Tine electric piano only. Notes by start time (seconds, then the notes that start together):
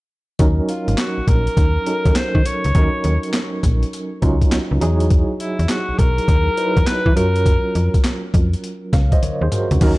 0.39 F#3 C#4 D#4 A#4
1.86 F#3 C#4 D#4 A4
1.94 A#4
2.74 F#3 C#4 D#4 A#4
4.21 F#3 C#4 D#4 F4
4.81 F#3 D#4 E4 G#4
6.57 F#3 D#4 E4 B4
7.16 F#3 C#4 F4 A#4
8.93 C#5 F5
9.12 C5 D#5
9.23 A#4 C#5
9.42 G#4 C5
9.53 F#4 A#4
9.72 D#4 F#4
9.82 F#3 C#4 D#4 A#4